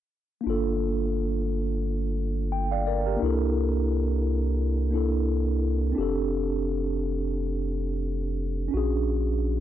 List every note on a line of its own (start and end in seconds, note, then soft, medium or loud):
0.41 3.15 A#3 medium
0.41 3.16 D4 soft
0.47 3.17 G1 medium
0.47 3.18 F4 medium
0.47 2.50 A4 medium
2.52 2.70 G5 medium
2.71 2.85 D5 soft
2.71 2.86 F5 medium
2.87 3.05 A#4 soft
2.87 3.05 D5 medium
3.06 3.39 G4 soft
3.06 3.38 A#4 soft
3.16 4.87 A#3 medium
3.16 4.89 D4 medium
3.22 5.93 C2 medium
3.22 4.90 E4 medium
3.22 4.92 A4 medium
4.91 5.95 A#3 soft
4.91 5.94 D4 soft
4.91 5.97 E4 soft
4.95 5.98 A4 soft
5.92 8.66 C4 medium
5.92 8.68 D4 medium
5.98 8.69 F1 medium
5.98 8.69 G4 medium
5.98 8.70 A4 medium
8.68 9.60 C#4 medium
8.68 9.60 D4 medium
8.74 9.60 A#1 medium
8.74 9.60 F#4 medium
8.74 9.60 G#4 medium